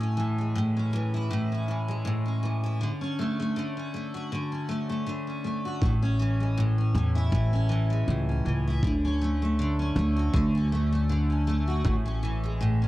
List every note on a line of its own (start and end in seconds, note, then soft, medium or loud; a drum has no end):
0.00 0.54 A2 medium
0.00 0.38 A3 medium
0.00 0.76 C#4 medium
0.17 0.92 E3 medium
0.38 1.87 G#3 soft
0.55 1.29 A2 medium
0.77 1.52 C#4 soft
0.93 1.67 E3 medium
1.14 2.62 E4 medium
1.31 2.04 A2 medium
1.52 2.25 C#4 soft
1.68 2.42 E3 medium
1.88 2.89 G#3 medium
2.05 2.88 A2 medium
2.26 3.01 C#4 soft
2.43 2.80 E3 medium
2.64 2.89 E4 medium
2.81 3.55 D3 medium
3.01 3.76 C#4 soft
3.19 3.39 A3 medium
3.40 3.93 A3 soft
3.56 4.31 D3 medium
3.77 4.52 C#4 soft
3.94 4.68 A3 medium
4.14 5.64 F#4 medium
4.32 5.05 D3 medium
4.52 5.27 C#4 soft
4.69 4.89 A3 medium
4.89 5.44 A3 medium
5.06 5.90 D3 medium
5.27 6.02 C#4 soft
5.44 6.40 A3 medium
5.65 5.90 F#4 medium
5.82 6.91 A1 medium
5.82 6.56 A2 medium
5.82 kick loud
6.02 6.78 C#4 medium
6.19 6.94 E3 medium
6.40 7.89 G#3 soft
6.58 7.31 A2 medium
6.78 7.53 C#4 soft
6.95 7.29 E2 medium
6.95 7.68 E3 medium
7.15 8.66 E4 medium
7.32 8.04 A1 medium
7.32 8.07 A2 medium
7.32 kick loud
7.53 8.28 C#4 medium
7.69 8.45 E3 medium
7.90 8.91 G#3 medium
8.08 8.42 C#2 medium
8.08 8.91 A2 medium
8.29 9.04 C#4 soft
8.45 8.80 C#2 medium
8.45 8.83 E3 medium
8.67 8.92 E4 medium
8.83 9.92 D2 medium
8.83 9.58 D3 medium
8.83 kick loud
9.05 9.79 C#4 medium
9.21 9.42 A3 medium
9.42 9.96 A3 medium
9.59 10.32 D3 medium
9.79 10.54 C#4 medium
9.96 10.31 D2 medium
9.96 10.72 A3 medium
10.17 11.66 F#4 medium
10.33 11.81 D2 medium
10.33 11.08 D3 medium
10.33 kick loud
10.55 11.29 C#4 medium
10.72 10.92 A3 medium
10.92 11.47 A3 medium
11.09 11.93 D3 medium
11.30 12.05 C#4 soft
11.47 12.43 A3 medium
11.68 11.93 F#4 medium
11.84 12.88 A1 medium
11.84 12.59 A2 medium
11.84 kick medium
12.06 12.81 C#4 medium
12.23 12.88 E3 medium
12.44 12.88 G#3 medium
12.61 12.88 A2 medium
12.82 12.88 C#4 soft